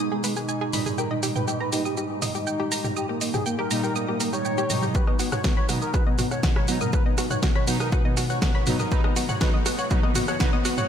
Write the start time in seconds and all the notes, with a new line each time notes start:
Already playing: G#2 B2 D#3 G#3 D#4
0.12 G#3 G#4
0.24 G#3 B4, open hi-hat, shaker
0.36 D#4 G#4, shaker
0.49 G#5, shaker
0.61 G#4
0.73 A#2 G3 D#4 B5, mid tom, open hi-hat, shaker
0.86 G#4, mid tom, shaker
0.98 A#2 G3 G4 A#4, shaker
1.11 D#4 D#5
1.23 D#4 G4, open hi-hat, shaker
1.36 B4 G5, mid tom, shaker
1.48 D#4 G4, shaker
1.60 B4 A#5
1.72 A#2 G3 D#4 G4, open hi-hat, shaker
1.85 G4 D#6, shaker
1.97 D#4 G4, shaker
2.10 D#4
2.22 D#4 D#5, mid tom, open hi-hat, shaker
2.35 D#4 G4, shaker
2.47 G5, shaker
2.60 G4
2.72 A#5, open hi-hat, shaker
2.84 G4, mid tom, shaker
2.96 G4 D#6, shaker
3.09 A#3 G4
3.21 A#3 D#5, open hi-hat, shaker
3.34 G4 G#4, mid tom, shaker
3.46 A#3 G5, shaker
3.59 G4 A#4
3.71 A#2 G3 A#3 D#4 A#5, open hi-hat, shaker
3.84 G4 A#4, shaker
3.96 A#3 D#6, shaker
4.08 A#3 G4
4.20 A#3 A#4, open hi-hat, shaker
4.33 G4 C#5, shaker
4.45 G5, shaker
4.58 G4, shaker
4.70 B2 F#3 D#4 A#5, mid tom, open hi-hat, shaker
4.83 G4, mid tom, shaker
4.95 B2 F#3 F#4 B4, kick, riser, shaker
5.07 B3 D#5, cross-stick
5.19 B3 F#4, open hi-hat, shaker
5.32 C#5 F#5, cross-stick, mid tom, shaker
5.44 B3 F#4, kick, snare, shaker
5.57 C#5 B5
5.69 B2 F#3 B3 D#4 F#4, cross-stick, open hi-hat, shaker
5.82 A#4 D#6, shaker
5.94 F#4 B4, kick, cross-stick, shaker
6.07 B3 D#5
6.19 B3 F#4, mid tom, open hi-hat, shaker
6.31 C#5 F#5, cross-stick, shaker
6.43 B3 F#4, kick, snare, shaker
6.56 C#5 B5, cross-stick
6.68 B2 F#3 B3 D#4 F#4, open hi-hat, shaker
6.81 A#4 D#6, mid tom, shaker
6.93 G#3 F#4 B4, kick, cross-stick, shaker
7.06 B3 D#5
7.18 B3 F#4, cross-stick, open hi-hat, shaker
7.31 C#5 F#5, mid tom, shaker
7.43 B3 F#4, kick, snare, shaker
7.55 C#5 B5, cross-stick
7.67 B2 F#3 B3 D#4 F#4, open hi-hat, shaker
7.80 A#4 D#6, cross-stick, shaker
7.92 F#4 B4, kick, shaker
8.05 B3 D#5
8.17 F#4, cross-stick, open hi-hat, shaker
8.29 C#5 F#5, shaker
8.42 B3 F#4, kick, cross-stick, snare, shaker
8.54 C#5 B5
8.67 B2 F#3 B3 D#4 F#4, mid tom, open hi-hat, shaker
8.79 A#4 D#6, cross-stick, mid tom, shaker
8.91 B2 C#3 E3 F#3 D#4 E4 F#4 A4 B4, kick, shaker
9.04 B3 D#5, cross-stick
9.16 B3 F#4, open hi-hat, shaker
9.29 C#5 F#5, mid tom, shaker
9.41 B2 F#3 D#4 F#4 B4, kick, cross-stick, snare, shaker
9.53 B3 D#5
9.65 B3 F#4, cross-stick, open hi-hat, shaker
9.78 C#5 F#5, shaker
9.90 B2 F#3 D#4 F#4 B4, kick, shaker
10.03 B3 D#5, cross-stick
10.15 B3 F#4, mid tom, open hi-hat, shaker
10.28 C#5 F#5, cross-stick, shaker
10.40 B2 F#3 D#4 F#4 B4, kick, snare, shaker
10.53 B3 D#5
10.65 B3 F#4, cross-stick, open hi-hat, shaker
10.78 C#5 F#5, mid tom, shaker